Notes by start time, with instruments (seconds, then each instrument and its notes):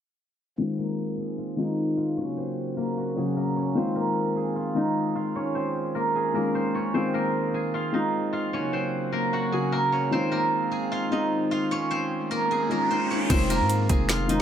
0.58 felt piano D#3 G#3 C4 F4, pipe organ D#3 G#3 C4 F4, guzheng C4 C5
0.78 guzheng A#3 A#4
1.19 guzheng G#4 G#5
1.38 guzheng F4 F5
1.57 felt piano D#3 G#3 C4 F4, guzheng D#4 D#5
1.97 guzheng F4 F5
2.17 pipe organ C#3 F#3 A#3 F#4, guzheng C#4 C#5
2.37 guzheng C4 C5
2.77 guzheng A#3 A#4
2.97 guzheng F#4 F#5
3.16 felt piano C#3 F#3 A#3 F#4, guzheng G#4 G#5
3.36 guzheng A#3 A#4
3.56 guzheng C#4 C#5
3.75 felt piano D#3 G#3 C4 F4, pipe organ D#3 G#3 C4 F4, guzheng C4 C5
3.95 guzheng A#3 A#4
4.36 guzheng G#4 G#5
4.56 guzheng F4 F5
4.75 felt piano D#3 G#3 C4 D#4, guzheng D#4 D#5
5.15 guzheng F4 F5
5.35 pipe organ D#3 G#3 C#4, guzheng C#4 C#5
5.55 guzheng C4 C5
5.95 guzheng A#3 A#4
6.15 guzheng G#4 G#5
6.34 felt piano D#3 G#3 C#4 F4, guzheng A#3 A#4
6.55 guzheng C4 C5
6.75 guzheng C#4 C#5
6.94 felt piano D#3 G#3 C4 F4, pipe organ C4, guzheng C4 C5
7.14 guzheng A#3 A#4
7.54 guzheng G#4 G#5
7.74 guzheng F4 F5
7.92 felt piano D#3 G#3 C4 F4, guzheng D#4 D#5
8.33 guzheng F4 F5
8.53 pipe organ C#3 F#3 A#3 F#4, guzheng C#4 C#5
8.73 guzheng C4 C5
9.12 guzheng A#3 A#4
9.33 guzheng F#4 F#5
9.52 felt piano C#3 F#3 A#3 F#4, guzheng G#4 G#5
9.72 guzheng A#3 A#4
9.92 guzheng C#4 C#5
10.11 felt piano D#3 G#3 C4 F4, pipe organ D#3 G#3 C4 F4, guzheng C4 C5
10.32 guzheng A#3 A#4
10.71 guzheng G#4 G#5
10.92 guzheng F4 F5
11.11 felt piano D#3 G#3 C4 D#4, guzheng D#4 D#5
11.51 guzheng F4 F5
11.71 pipe organ C#4, guzheng C#4 C#5, riser
11.91 guzheng C4 C5
12.31 guzheng A#3 A#4
12.51 guzheng G#4 G#5
12.69 felt piano D#3 G#3 C#4 F4, guzheng A#3 A#4
12.91 guzheng C4 C5
13.11 guzheng C#4 C#5
13.30 808-style bass F1, felt piano D#3 G#3 C4 F4, pipe organ D#3 G#3 C4 F4, guzheng C4 C5, kick, closed hi-hat, crash
13.50 guzheng A#3 A#4, closed hi-hat
13.60 808-style bass G#2
13.70 closed hi-hat
13.89 808-style bass F1, guzheng G#4 G#5, kick, closed hi-hat
14.09 guzheng F4 F5, finger snap, snare, closed hi-hat
14.28 felt piano D#3 G#3 C4 F4, guzheng D#4 D#5, closed hi-hat